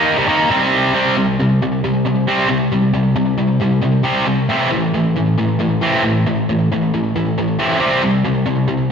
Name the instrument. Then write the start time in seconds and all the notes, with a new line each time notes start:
distorted electric guitar
Already playing: D#3 A#3 D#4
0.17 C3 G3
0.28 D#3 A#3 D#4
0.50 C3 G3 C4
0.94 C3 G3 C4
1.17 C3 G3
1.40 C3 G3
1.62 C3 G3
1.84 C3 G3
2.06 C3 G3
2.28 C3 G3 C4
2.49 C3 G3
2.72 C3 G3
2.94 C3 G3
3.16 C3 G3
3.38 C3 G3
3.60 C3 G3
3.82 C3 G3
4.03 C3 G3 C4
4.26 C3 G3
4.49 A2 E3 C4
4.71 A2 E3
4.94 A2 E3
5.16 A2 E3
5.38 A2 E3
5.59 A2 E3
5.81 A2 E3 C4
6.04 A2 E3
6.27 A2 E3
6.49 A2 E3
6.72 A2 E3
6.94 A2 E3
7.16 A2 E3
7.38 A2 E3
7.59 A2 E3 C4
7.80 C3 G3 C4
8.02 C3 G3
8.25 C3 G3
8.46 C3 G3
8.68 C3 G3